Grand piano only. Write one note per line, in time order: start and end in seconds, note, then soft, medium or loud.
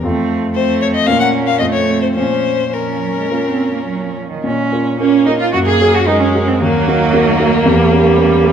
0.03 1.05 F2 medium
0.03 1.04 C4 soft
0.03 1.04 F4 soft
0.03 1.04 A4 soft
1.07 1.59 A#2 medium
1.07 1.57 C#4 soft
1.07 1.57 F4 soft
1.07 1.58 A#4 soft
1.60 2.15 F2 soft
1.60 2.12 C4 soft
1.60 2.13 F4 soft
1.60 2.13 A4 soft
2.16 4.40 A#2 soft
3.30 4.40 C#4 soft
3.30 4.40 F4 soft
3.30 4.41 A#4 soft
4.44 4.71 A#2 medium
4.71 4.97 C#4 soft
4.71 4.97 F4 soft
4.71 4.97 A#4 soft
5.00 5.24 C#4 soft
5.00 5.24 F4 soft
5.00 5.25 A#4 soft
5.27 5.51 C#4 soft
5.27 5.51 F4 soft
5.27 5.52 A#4 soft
5.53 5.79 F#2 medium
5.80 6.04 C#4 soft
5.80 6.05 F#4 soft
5.80 6.05 A#4 soft
6.07 6.31 C#4 soft
6.07 6.32 F#4 soft
6.07 6.32 A#4 soft
6.35 6.59 C#4 soft
6.35 6.59 F#4 soft
6.35 6.59 A#4 soft
6.60 6.86 D#2 medium
6.88 7.11 D#4 soft
6.88 7.11 F#4 soft
6.88 7.12 A#4 soft
7.13 7.37 D#4 soft
7.13 7.37 F#4 soft
7.13 7.38 A#4 medium
7.39 7.63 D#4 soft
7.39 7.63 F#4 soft
7.39 7.64 A#4 medium
7.65 7.91 E2 medium
7.92 8.16 C#4 medium
7.92 8.16 G4 soft
7.92 8.16 A#4 medium
8.17 8.42 C#4 soft
8.17 8.42 G4 soft
8.17 8.42 A#4 medium
8.44 8.52 C#4 soft
8.44 8.52 G4 soft
8.44 8.52 A#4 medium